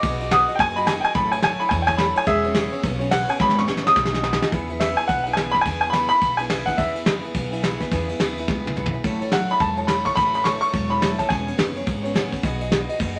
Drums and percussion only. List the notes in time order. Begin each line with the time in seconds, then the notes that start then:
0.03 kick, ride
0.20 ride
0.31 snare, ride
0.49 ride
0.59 kick, snare, ride
0.76 ride
0.87 snare, ride
1.04 ride
1.15 kick, ride
1.32 ride
1.42 snare, ride
1.60 ride
1.71 kick, snare, ride
1.88 kick, ride
1.98 snare, ride
2.16 ride
2.26 kick, ride
2.44 ride
2.55 snare, ride
2.72 ride
2.83 kick, snare, ride
3.01 ride
3.11 snare, ride
3.29 ride
3.40 kick, snare
3.49 snare
3.59 snare
3.68 snare
3.77 snare
3.87 snare
3.96 kick, snare
4.05 snare
4.14 snare
4.23 snare
4.33 snare
4.42 snare
4.52 kick, ride
4.70 ride
4.80 snare, ride
4.98 ride
5.09 kick, ride
5.26 ride
5.37 snare, ride
5.54 kick, snare, ride
5.65 kick, ride
5.82 ride
5.93 snare, ride
6.10 ride
6.21 kick, ride
6.39 ride
6.50 snare, ride
6.67 kick, snare, ride
6.78 kick, ride
6.96 ride
7.06 snare, ride
7.24 ride
7.34 kick, ride
7.53 ride
7.64 snare, ride
7.80 kick, snare, ride
7.91 kick, ride
8.09 ride
8.20 snare, ride
8.38 ride
8.48 kick, snare
8.67 high tom
8.77 mid tom
8.86 mid tom
9.04 kick, ride
9.21 ride
9.32 snare, ride
9.50 ride
9.59 kick, ride
9.77 ride
9.88 snare, ride
10.06 kick, ride
10.17 kick, ride
10.34 ride
10.45 snare, ride
10.62 ride
10.73 kick, ride
10.91 ride
11.02 snare, ride
11.19 kick, snare, ride
11.30 kick, ride
11.48 ride
11.59 snare, ride
11.76 ride
11.87 kick, ride
12.05 ride
12.15 snare, ride
12.32 kick, ride
12.43 kick, ride
12.61 ride
12.72 snare, ride
12.89 ride
13.00 kick, ride